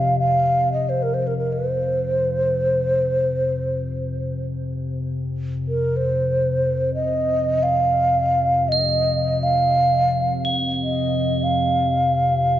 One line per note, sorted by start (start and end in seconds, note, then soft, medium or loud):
0.00 4.34 F2 medium
0.00 4.33 C3 medium
0.00 0.18 F5 medium
0.19 0.70 F5 medium
0.73 0.91 D#5 medium
0.89 1.04 C5 medium
1.03 1.15 A#4 medium
1.14 1.23 C5 medium
1.23 1.28 C5 medium
1.27 1.37 A#4 medium
1.38 1.54 A#4 medium
1.53 4.44 C5 medium
4.35 12.60 F2 medium
4.35 12.60 C3 medium
5.68 5.98 A#4 medium
5.97 6.93 C5 medium
6.94 7.64 D#5 medium
7.63 8.70 F5 medium
8.69 9.44 D#5 medium
8.69 12.60 C8 medium
9.43 10.57 F5 medium
10.45 12.60 G#7 soft
10.83 11.45 D#5 medium
11.43 12.60 F5 medium